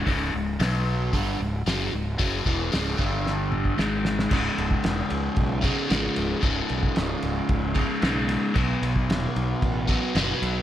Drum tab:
CC |----------------|----------------|x---------------|----------------|
RD |----------------|----------------|--x-x-x-x-x-x-x-|x-x-x-x-x-x-x-x-|
HH |o---o---o---o---|o---o-----------|----------------|----------------|
SD |----o-------o---|----o---o---o-oo|----o-------o---|----o-------o---|
T2 |----------------|----------o-----|----------------|----------------|
BD |o-------o-------|o-o---o----o----|o--o----o-o-----|o--o----o-o-----|

CC |x---------------|
RD |--x-x-x-x-x-x-x-|
HH |----------------|
SD |----o-------o---|
T2 |----------------|
BD |o--o----o-o-----|